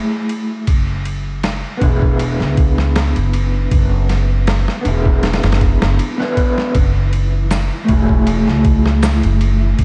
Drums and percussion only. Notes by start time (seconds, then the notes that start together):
0.29 ride
0.67 kick, ride
1.05 ride
1.44 snare, ride
1.81 kick, ride
2.02 kick
2.19 ride
2.40 snare
2.57 kick, ride
2.78 snare
2.96 snare, ride
3.16 ride
3.33 ride
3.71 kick, ride
4.09 snare, ride
4.47 snare, ride
4.68 snare
4.85 ride
5.06 kick
5.23 snare, ride
5.33 snare, ride
5.43 snare, ride
5.52 snare, ride
5.61 kick, ride
5.82 snare
5.99 ride
6.20 snare
6.37 kick, ride
6.58 snare
6.75 kick, ride
7.13 ride
7.51 snare, ride, maracas
7.88 kick, ride
8.09 kick
8.27 ride
8.48 snare
8.65 kick, ride
8.86 snare
9.03 snare, ride, maracas
9.23 ride
9.41 ride
9.79 kick, ride